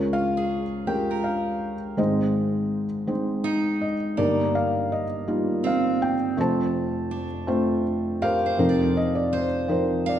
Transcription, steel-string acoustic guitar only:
0.13 1.89 F4 soft
0.37 2.10 G#4 soft
0.87 2.31 G4 soft
1.11 2.51 A#4 soft
3.44 4.50 D#4 medium
4.17 5.92 A#3 medium
5.64 6.70 C4 medium
7.11 8.87 D4 medium
8.22 8.92 G4 medium
8.46 8.68 C5 soft
8.69 9.34 D5 soft
9.33 10.19 C5 medium
10.06 10.19 F5 medium

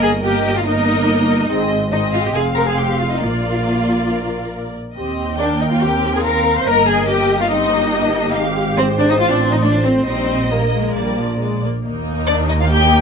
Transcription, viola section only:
0.00 0.22 A#3 medium
0.00 0.22 A#4 medium
0.23 0.65 A#3 medium
0.23 0.64 A#4 medium
0.66 1.49 A#3 medium
0.66 1.48 A#4 medium
1.50 1.89 C4 medium
1.50 1.89 G#4 medium
1.92 2.34 C4 medium
1.92 2.34 G#4 medium
2.35 3.20 C4 medium
2.35 3.20 G#4 medium
3.21 4.75 A#3 medium
3.21 4.73 A#4 medium
4.97 5.37 C4 medium
4.97 5.37 G4 medium
5.40 5.83 A#3 medium
5.40 6.67 A#4 medium
5.83 6.68 C4 medium
6.68 7.08 A#3 medium
6.68 7.50 A#4 medium
7.10 7.51 A#3 medium
7.52 7.73 C4 medium
7.52 9.21 G4 medium
7.73 8.36 A#3 medium
8.35 8.76 G#3 medium
8.77 9.20 G#3 medium
9.20 9.64 C4 medium
9.20 9.62 F4 medium
9.63 10.08 A3 medium
9.63 10.07 F4 medium
10.07 10.47 G3 medium
10.07 10.47 D#4 medium
10.52 10.60 G3 medium
10.74 10.96 G#3 medium
10.97 11.20 G3 medium
11.19 11.41 F3 medium
11.40 11.63 G#3 medium
11.64 11.84 A#3 medium
11.85 12.67 A#3 medium
11.85 12.67 D#4 medium
12.72 13.01 A#3 medium
12.72 13.01 D#4 medium

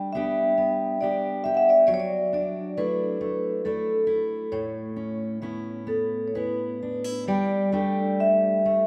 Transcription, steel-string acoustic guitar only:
0.00 1.87 G3 medium
0.00 0.15 D4 soft
0.15 0.56 B3 soft
0.15 1.02 D4 soft
0.15 1.02 G4 soft
0.58 1.01 B3 soft
1.02 1.97 B3 soft
1.02 2.32 D4 soft
1.02 1.44 G4 soft
1.45 1.97 G4 medium
1.88 4.51 F#3 medium
2.33 2.76 D4 soft
2.77 3.20 A3 soft
2.77 3.64 D4 soft
2.77 3.66 E4 medium
3.21 3.65 A3 soft
3.65 5.41 A3 soft
3.65 4.61 D4 soft
3.65 4.06 E4 soft
4.07 5.43 E4 soft
4.52 7.29 A2 medium
4.96 5.41 C#4 soft
5.42 5.86 B3 soft
5.42 6.34 C#4 soft
5.42 6.35 E4 soft
5.87 6.34 B3 soft
6.35 7.38 B3 soft
6.35 7.38 C#4 soft
6.35 6.82 E4 soft
6.82 7.04 D4 soft
7.04 7.28 E4 soft
7.28 8.87 G3 medium
7.28 7.72 G4 medium
7.72 8.65 A3 soft
7.72 8.87 D4 soft
7.72 8.87 G4 medium
8.65 8.87 A3 soft

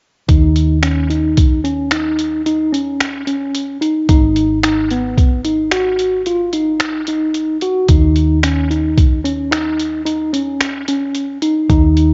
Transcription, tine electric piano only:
0.28 0.78 D#4 medium
0.83 1.07 C#4 medium
1.10 1.59 D#4 medium
1.64 1.89 C#4 medium
1.92 2.41 D#4 medium
2.46 2.71 D#4 medium
2.73 3.22 C#4 medium
3.27 3.76 C#4 medium
3.81 4.06 D#4 medium
4.09 4.58 D#4 medium
4.63 4.88 D#4 medium
4.91 5.40 B3 medium
5.45 5.69 D#4 medium
5.72 6.21 F#4 medium
6.27 6.51 F4 medium
6.53 7.02 D#4 medium
7.08 7.57 D#4 medium
7.62 7.87 F#4 medium
7.89 8.38 D#4 medium
8.43 8.68 C#4 medium
8.71 9.19 D#4 medium
9.25 9.49 C#4 medium
9.51 10.01 D#4 medium
10.06 10.30 D#4 medium
10.33 10.82 C#4 medium
10.88 11.37 C#4 medium
11.42 11.67 D#4 medium
11.70 12.14 D#4 medium

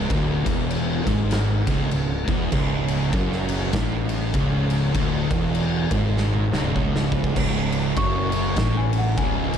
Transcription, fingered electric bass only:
0.10 0.44 D1 medium
0.46 1.03 E1 loud
1.07 1.63 G#1 loud
1.67 1.90 C#1 loud
1.92 2.25 C#1 medium
2.27 2.50 E1 medium
2.52 3.09 C#1 loud
3.13 3.69 F#1 medium
3.73 4.30 A1 loud
4.34 4.90 C#1 loud
4.95 5.28 D1 loud
5.31 5.87 E1 loud
5.91 6.47 G#1 medium
6.51 7.32 C#1 loud
7.36 7.93 C#1 loud
7.97 8.53 F#1 medium
8.57 9.13 A1 loud
9.18 9.58 C#1 loud

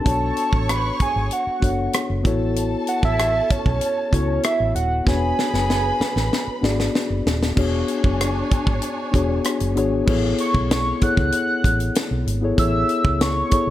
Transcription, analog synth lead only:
0.00 0.72 A5 loud
0.71 1.01 B5 loud
1.02 1.34 G#5 medium
1.33 2.26 F#5 medium
2.88 3.03 F#5 medium
3.05 3.53 E5 medium
3.51 4.13 C#5 medium
4.14 4.42 C#5 medium
4.45 4.74 E5 loud
4.75 5.04 F#5 loud
5.08 6.91 G#5 loud
10.40 10.69 C#6 medium
10.72 11.04 C#6 loud
11.03 12.27 F#6 loud
12.59 13.23 E6 loud
13.22 13.70 C#6 loud

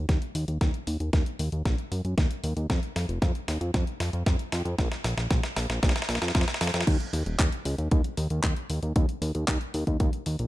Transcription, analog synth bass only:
0.09 0.19 D#2 loud
0.35 0.45 D#2 medium
0.48 0.58 D#2 medium
0.61 0.71 D#2 loud
0.87 0.97 D#2 medium
1.00 1.10 D#2 medium
1.13 1.23 D#2 loud
1.39 1.49 D#2 medium
1.53 1.63 D#2 medium
1.66 1.76 A#1 loud
1.92 2.02 F#2 loud
2.05 2.15 F#2 medium
2.18 2.28 D#2 loud
2.44 2.54 D#2 medium
2.57 2.67 D#2 medium
2.70 2.80 F2 loud
2.96 3.06 F2 medium
3.09 3.19 F1 medium
3.22 3.32 F2 loud
3.48 3.58 D#2 medium
3.61 3.71 F2 medium
3.74 3.84 F2 loud
4.00 4.10 F2 loud
4.13 4.23 F2 medium
4.26 4.36 F2 loud
4.52 4.62 F2 medium
4.65 4.75 F2 medium
4.79 4.89 A#1 loud
5.05 5.15 A#1 loud
5.17 5.28 A#1 medium
5.31 5.41 A#1 loud
5.57 5.67 A#1 medium
5.70 5.80 A#1 medium
5.83 5.93 A#1 loud
6.09 6.19 A#1 loud
6.22 6.32 F2 medium
6.35 6.45 F2 loud
6.61 6.71 F2 medium
6.74 6.84 F2 medium
6.87 6.97 D#2 loud
7.13 7.23 D#2 medium
7.26 7.36 D#1 medium
7.39 7.49 D#2 loud
7.65 7.75 C#2 loud
7.78 7.89 D#2 medium
7.92 8.02 D#2 loud
8.17 8.28 D#2 loud
8.31 8.41 D#2 medium
8.44 8.54 D#2 loud
8.70 8.80 D#2 medium
8.83 8.93 D#2 medium
8.96 9.06 D#2 loud
9.22 9.32 D#2 medium
9.35 9.45 D#2 medium
9.48 9.58 D#2 loud
9.74 9.84 D#2 medium
9.87 9.97 D#2 medium
10.00 10.10 D#2 loud
10.26 10.37 D#2 medium
10.40 10.47 A#1 medium

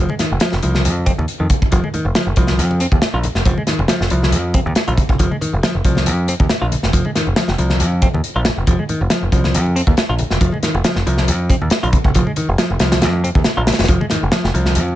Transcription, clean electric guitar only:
0.10 0.14 G#3 medium
0.19 0.31 D#3 medium
0.41 0.52 F3 medium
0.63 1.05 F3 medium
1.06 1.11 C4 loud
1.40 1.47 D#3 medium
1.72 1.82 F3 loud
1.84 1.88 G#3 medium
1.94 2.05 D#3 medium
2.16 2.27 F3 medium
2.38 2.80 F3 medium
2.81 2.85 C4 loud
3.14 3.18 F4 medium
3.46 3.56 F3 loud
3.58 3.62 G#3 medium
3.68 3.79 D#3 medium
3.90 4.00 F3 medium
4.11 4.54 F3 medium
4.54 4.59 C4 loud
4.88 4.92 F4 medium
5.20 5.30 F3 loud
5.31 5.35 G#3 medium
5.41 5.52 D#3 medium
5.63 5.74 F3 medium
5.85 6.28 F3 medium
6.29 6.33 C4 loud
6.62 6.66 F4 medium
6.94 7.04 F3 loud
7.06 7.09 G#3 medium
7.16 7.27 D#3 medium
7.37 7.48 F3 medium
7.59 8.01 F3 medium
8.02 8.07 C4 loud
8.36 8.40 F4 medium
8.68 8.78 F3 loud
8.79 8.83 G#3 medium
8.89 9.00 D#3 medium
9.11 9.22 F3 medium
9.33 9.75 F3 medium
9.76 9.81 C4 loud
10.09 10.14 F4 medium
10.41 10.52 F3 loud
10.53 10.57 G#3 medium
10.63 10.74 D#3 medium
10.85 10.96 F3 medium
11.07 11.49 F3 medium
11.50 11.55 C4 loud
11.83 11.87 F4 medium
12.15 12.26 F3 loud
12.27 12.31 G#3 medium
12.37 12.48 D#3 medium
12.58 12.70 F3 medium
12.81 13.23 F3 medium
13.24 13.29 C4 loud
13.57 13.61 F4 medium
13.89 14.00 F3 loud
14.01 14.05 G#3 medium
14.11 14.22 D#3 medium
14.32 14.44 F3 medium
14.54 14.95 F3 medium

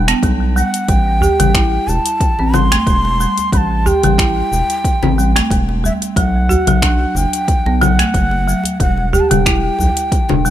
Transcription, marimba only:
0.08 0.22 B3 loud
0.24 0.55 G3 medium
0.56 0.73 G3 medium
0.89 1.06 G3 medium
1.22 1.38 G4 loud
1.40 1.53 G3 loud
1.55 1.65 E4 medium
2.39 2.53 C4 medium
2.54 2.71 G3 loud
2.72 2.85 A3 loud
2.87 3.18 G3 medium
3.20 3.37 G3 medium
3.53 3.70 G3 medium
3.86 4.02 G4 loud
4.04 4.17 G3 loud
4.19 4.29 E4 medium
5.03 5.16 C4 medium
5.18 5.35 G3 loud
5.36 5.49 A3 loud
5.51 5.82 G3 medium
5.84 6.01 G3 medium
6.17 6.34 F#3 medium
6.49 6.65 F#4 loud
6.68 6.81 F#3 loud
6.83 6.93 D4 medium
7.66 7.80 B3 medium
7.81 7.98 F#3 loud
7.99 8.13 A3 loud
8.15 8.46 F#3 medium
8.47 8.64 F#3 medium
8.80 8.97 G3 medium
9.13 9.29 G4 loud
9.31 9.45 G3 loud
9.46 9.56 E4 medium
10.30 10.43 D4 medium
10.45 10.50 G3 loud

